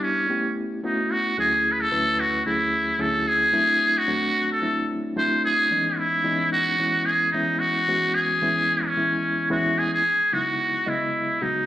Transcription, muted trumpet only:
0.02 0.53 C#4 medium
0.86 1.13 D#4 medium
1.11 1.38 F#4 medium
1.40 1.73 G#4 medium
1.72 1.82 B4 medium
1.81 2.21 A4 loud
2.20 2.45 F#4 medium
2.46 3.03 E4 medium
3.01 3.30 A4 medium
3.28 3.99 G#4 loud
3.98 4.51 F#4 loud
4.52 4.88 A4 medium
5.18 5.43 C5 medium
5.45 5.99 G#4 loud
5.98 6.52 E4 medium
6.52 7.07 F#4 loud
7.06 7.31 G#4 medium
7.32 7.61 D#4 medium
7.59 8.16 F#4 loud
8.14 8.87 G#4 loud
8.86 9.51 C#4 medium
9.51 9.80 F#4 medium
9.79 9.93 G#4 medium
9.94 10.35 G#4 medium
10.33 10.90 F#4 medium
10.89 11.44 E4 medium
11.42 11.66 D#4 medium

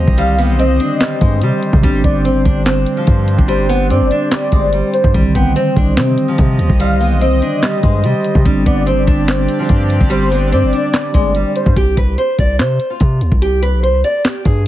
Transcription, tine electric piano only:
0.00 1.80 D3 medium
0.00 1.78 D#3 medium
0.00 1.79 G3 medium
0.00 1.80 C4 medium
1.81 5.09 D3 medium
1.81 5.10 G3 medium
1.81 5.11 C4 medium
1.86 5.12 D4 medium
5.12 8.40 D#3 medium
5.12 8.41 G3 medium
5.12 8.42 C4 medium
5.17 8.41 D3 medium
8.43 11.71 D3 medium
8.43 11.72 G3 medium
8.43 11.73 C4 medium
8.48 11.74 D4 medium

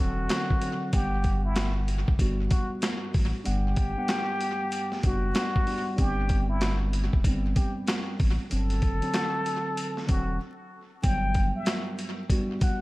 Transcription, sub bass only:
0.00 0.27 E1 medium
0.94 2.04 G1 loud
2.08 2.19 F#1 medium
2.19 2.48 G1 loud
3.15 3.32 A1 medium
3.47 3.75 G1 loud
3.77 3.95 G1 medium
5.04 5.33 F#1 loud
5.99 7.09 G1 loud
7.14 7.24 E1 medium
7.25 7.53 G1 loud
8.20 8.38 A1 medium
8.52 8.80 G1 loud
8.83 9.00 F#1 medium
10.09 10.38 E1 medium
11.04 11.51 G1 loud

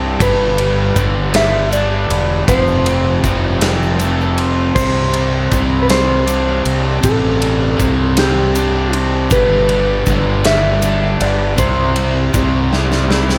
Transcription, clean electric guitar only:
0.22 1.36 B4 medium
1.36 1.73 E5 loud
1.73 2.44 D5 loud
2.49 3.30 C5 loud
4.75 5.78 C5 loud
5.82 5.89 B4 medium
5.91 6.62 C5 loud
7.05 8.18 A4 medium
8.19 8.99 G4 loud
9.32 10.46 B4 loud
10.47 11.18 E5 loud
11.22 11.57 D5 medium
11.59 13.06 C5 medium

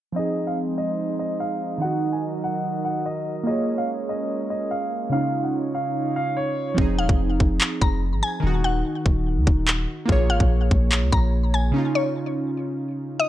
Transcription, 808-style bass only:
6.78 7.00 F1 loud
6.99 7.09 D#1 loud
7.09 7.39 F1 loud
7.40 7.60 F1 loud
7.82 8.14 F1 loud
8.12 8.22 G#1 medium
8.44 8.83 D#1 loud
9.06 9.38 D#1 loud
9.37 9.46 D#2 loud
9.47 9.87 D#1 loud
10.09 10.31 A#1 loud
10.30 10.40 G#1 loud
10.40 10.70 A#1 loud
10.71 11.04 A#1 loud
11.02 11.12 C#2 loud
11.13 11.72 A#1 loud

